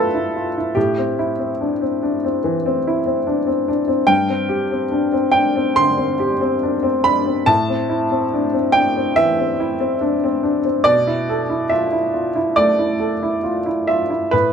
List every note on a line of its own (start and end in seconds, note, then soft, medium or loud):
0.00 0.78 A3 soft
0.00 0.78 B3 soft
0.00 0.15 E4 soft
0.00 0.36 F4 soft
0.00 0.76 A4 medium
0.00 0.78 B4 medium
0.00 0.78 C5 medium
0.15 0.47 E4 soft
0.36 0.55 F4 soft
0.58 0.77 E4 soft
0.75 2.39 A2 medium
0.75 3.67 G4 medium
0.98 1.30 C4 soft
1.19 1.51 E4 soft
1.39 1.72 C4 soft
1.61 1.81 D4 soft
1.81 2.14 C4 soft
2.03 2.23 D4 soft
2.25 2.56 C4 soft
2.44 2.76 E3 soft
2.66 2.98 C4 soft
2.87 3.19 E4 soft
3.06 3.39 C4 soft
3.27 3.47 D4 soft
3.47 3.80 C4 soft
3.68 3.88 D4 soft
3.88 4.09 C4 soft
4.07 5.75 G2 medium
4.07 5.30 G5 medium
4.29 4.63 C4 soft
4.49 4.84 G4 medium
4.71 5.05 C4 soft
4.92 5.14 D4 soft
5.13 5.48 C4 soft
5.32 5.57 D4 soft
5.32 5.77 G5 medium
5.56 5.91 C4 medium
5.76 6.13 D3 soft
5.76 7.05 C6 loud
5.98 6.33 C4 soft
6.19 6.55 G4 medium
6.41 6.76 C4 medium
6.63 6.85 D4 soft
6.83 7.18 C4 medium
7.04 7.27 D4 soft
7.04 7.47 B5 medium
7.26 7.48 C4 soft
7.46 9.12 A2 medium
7.46 8.74 A5 loud
7.69 8.03 C4 soft
7.89 8.24 E4 medium
8.11 8.45 C4 soft
8.34 8.54 D4 soft
8.53 8.87 C4 soft
8.72 8.95 D4 soft
8.72 9.16 G5 loud
8.96 9.30 C4 soft
9.16 9.51 E3 soft
9.16 10.87 E5 loud
9.39 9.73 C4 soft
9.60 9.94 E4 medium
9.80 10.14 C4 medium
10.01 10.23 D4 soft
10.24 10.58 C4 medium
10.43 10.65 D4 soft
10.64 10.86 C4 soft
10.84 12.54 B2 medium
10.84 11.71 D5 loud
11.07 11.42 E4 soft
11.29 11.64 A4 medium
11.50 11.85 E4 soft
11.69 11.93 F4 soft
11.69 12.57 E5 medium
11.92 12.28 E4 soft
12.14 12.36 F4 soft
12.35 12.71 E4 soft
12.56 12.92 A3 soft
12.56 13.87 D5 medium
12.79 13.14 E4 soft
13.00 13.35 A4 soft
13.23 13.57 E4 soft
13.43 13.66 F4 soft
13.66 14.01 E4 soft
13.87 14.10 F4 soft
13.87 14.32 E5 medium
14.10 14.32 E4 soft
14.31 14.53 A2 soft
14.31 14.53 B4 medium